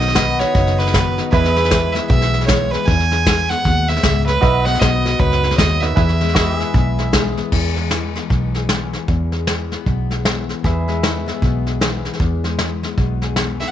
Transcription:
Already playing: fingered electric bass B1, steel-string acoustic guitar B2 D#3 D#4 F#4, grand piano D#4 F#4 B4 D#5, fiddle D#5
0.01 steel-string acoustic guitar B3, snare
0.08 snare
0.15 steel-string acoustic guitar D#3, pedal steel guitar F#4 B4 D#5, kick, snare, hi-hat pedal
0.39 steel-string acoustic guitar D#4, fiddle C#5, snare
0.55 fingered electric bass F#1, steel-string acoustic guitar F#2, kick, snare
0.67 snare
0.78 fiddle B4, snare
0.87 snare
0.94 steel-string acoustic guitar D#3 B3, kick, snare, hi-hat pedal
1.18 steel-string acoustic guitar D#4, snare
1.31 steel-string acoustic guitar E2, fingered electric bass E2, grand piano E4 G#4 B4 E5, pedal steel guitar G#4 B4 D#5, fiddle B4, kick, snare
1.44 snare
1.54 steel-string acoustic guitar G#3, pedal steel guitar E5, snare
1.64 snare
1.71 steel-string acoustic guitar E3, kick, snare, hi-hat pedal
1.92 steel-string acoustic guitar B3, fiddle E5, snare
2.07 fingered electric bass B1, steel-string acoustic guitar B2, fiddle E5, kick, snare
2.21 snare
2.34 snare
2.41 snare
2.46 fiddle C#5, kick, snare, hi-hat pedal
2.50 steel-string acoustic guitar E3 G#3
2.71 steel-string acoustic guitar B3, fiddle B4, snare
2.85 fingered electric bass E2, steel-string acoustic guitar E2, fiddle G#5, kick, snare
2.99 snare
3.11 steel-string acoustic guitar G#3, snare
3.26 kick, snare, hi-hat pedal
3.49 steel-string acoustic guitar B3, fiddle F#5, snare
3.65 fingered electric bass D#2, steel-string acoustic guitar B2, kick, snare
3.88 fiddle E5, snare
3.96 snare
4.03 fingered electric bass C#2, steel-string acoustic guitar G#2, kick, snare, hi-hat pedal
4.27 steel-string acoustic guitar A2, fiddle B4, snare
4.41 fingered electric bass B1, steel-string acoustic guitar B2, grand piano D#4 F#4 B4 D#5, pedal steel guitar F#4 B4 E5, kick, snare
4.63 steel-string acoustic guitar B3, pedal steel guitar D#5, fiddle F#5, snare
4.74 snare
4.80 fingered electric bass B1, steel-string acoustic guitar D#3, fiddle D#5, kick, snare, hi-hat pedal
5.05 steel-string acoustic guitar F#4, snare
5.19 fingered electric bass C#2, steel-string acoustic guitar F#2, fiddle B4, kick, snare
5.32 snare
5.43 snare
5.51 snare
5.58 fingered electric bass D#2, steel-string acoustic guitar C#3, fiddle D#5, kick, snare, hi-hat pedal
5.81 steel-string acoustic guitar D#3, grand piano D#4 F#4 B4 D#5, fiddle E5, snare
5.95 steel-string acoustic guitar E2, fingered electric bass E2, grand piano E4 G#4 B4 E5, kick, snare
6.09 snare
6.21 steel-string acoustic guitar G#3, snare
6.28 snare
6.35 steel-string acoustic guitar E3, pedal steel guitar F#4 B4 D#5, kick, snare, hi-hat pedal
6.57 steel-string acoustic guitar B3, pedal steel guitar G#4 E5, snare
6.74 fingered electric bass B1, steel-string acoustic guitar B2, kick, snare
6.99 snare
7.13 steel-string acoustic guitar E3 G#3, kick, snare, hi-hat pedal
7.37 steel-string acoustic guitar B3, snare
7.52 steel-string acoustic guitar E2 E3 G#3 B3 G#4, fingered electric bass E2, kick, snare, crash
7.76 steel-string acoustic guitar G#3, snare
7.91 steel-string acoustic guitar E3, snare, hi-hat pedal
8.15 steel-string acoustic guitar B3, snare
8.30 fingered electric bass B1, steel-string acoustic guitar B2, kick, snare
8.54 steel-string acoustic guitar G#4, snare
8.69 steel-string acoustic guitar E3, snare, hi-hat pedal
8.93 snare
9.08 fingered electric bass E2, steel-string acoustic guitar E2, kick, snare
9.32 steel-string acoustic guitar G#3, snare
9.47 steel-string acoustic guitar E3, snare, hi-hat pedal
9.72 steel-string acoustic guitar B3, snare
9.86 fingered electric bass B1, steel-string acoustic guitar B2, kick, snare
10.11 steel-string acoustic guitar G#4, snare
10.25 steel-string acoustic guitar E3, snare, hi-hat pedal
10.49 snare
10.64 steel-string acoustic guitar E2, fingered electric bass E2, pedal steel guitar G#4 B4 E5, kick, snare
10.88 steel-string acoustic guitar G#3, snare
11.03 steel-string acoustic guitar E3, snare, hi-hat pedal
11.26 steel-string acoustic guitar B3, snare
11.42 fingered electric bass B1, steel-string acoustic guitar B2, kick, snare
11.66 steel-string acoustic guitar G#4, snare
11.81 steel-string acoustic guitar E3, snare, hi-hat pedal
12.05 snare
12.13 snare
12.20 steel-string acoustic guitar E2, fingered electric bass E2, kick, snare
12.44 steel-string acoustic guitar G#3, snare
12.59 steel-string acoustic guitar E3, snare, hi-hat pedal
12.83 steel-string acoustic guitar B3, snare
12.97 fingered electric bass B1, steel-string acoustic guitar B2, kick, snare
13.22 steel-string acoustic guitar G#4, snare
13.36 steel-string acoustic guitar E3, snare, hi-hat pedal
13.60 fiddle E5, snare
13.68 fiddle F#5

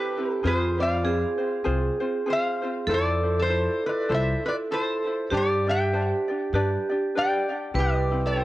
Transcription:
Already playing: ukulele C4 E4 G4 B4, resonator guitar played with a steel bar G4 B4, vibraphone G4
0.18 ukulele C4 E4 B4
0.32 resonator guitar played with a steel bar A4
0.43 upright bass F2, ukulele C4 F4 G#4 C5, vibraphone F4, resonator guitar played with a steel bar G#4
0.47 resonator guitar played with a steel bar C5
0.79 ukulele C4 F4 C5, resonator guitar played with a steel bar D5 F5
1.04 ukulele C4 F4 G#4 C5, vibraphone G#4
1.38 ukulele C4 F4 C5
1.64 upright bass C2, ukulele C4 F4 G#4 C5
2.00 ukulele C4 F4 C5
2.26 ukulele C4 F4 G#4 C5
2.30 resonator guitar played with a steel bar C5 F5
2.62 ukulele C4 F4 C5
2.87 upright bass F2, ukulele E4 F4 A4 C5, vibraphone A4, resonator guitar played with a steel bar A4
2.94 resonator guitar played with a steel bar D5
3.23 ukulele E4 F4 C5
3.39 resonator guitar played with a steel bar A4 C5
3.49 ukulele E4 F4 A4 C5
3.86 ukulele E4 F4, resonator guitar played with a steel bar B4 D5
4.09 upright bass C2, ukulele E4 F4 A4 C5, resonator guitar played with a steel bar C5
4.14 resonator guitar played with a steel bar E5
4.46 ukulele E4 F4, resonator guitar played with a steel bar B4 D5
4.71 ukulele E4 F4 A4 C5, resonator guitar played with a steel bar A4 C5
5.06 ukulele E4 F4 C5
5.30 upright bass G2, ukulele D4 G4 C5 D5, vibraphone G4, resonator guitar played with a steel bar G4
5.37 resonator guitar played with a steel bar D5
5.67 ukulele D4 G4 D5, resonator guitar played with a steel bar E5 G5
5.93 ukulele D4 G4 C5 D5
6.28 ukulele D4 G4 D5
6.53 upright bass G2, ukulele D4 G4 B4 D5, vibraphone G4
6.90 ukulele D4 G4 D5
7.15 ukulele D4 G4 B4 D5, resonator guitar played with a steel bar D5 G5
7.49 ukulele D4 G4 D5
7.74 upright bass C2, ukulele C4 E4 G4, vibraphone B4
7.79 resonator guitar played with a steel bar G4 D5
8.11 ukulele C4 E4
8.26 resonator guitar played with a steel bar A4 C5
8.36 ukulele C4 E4 G4

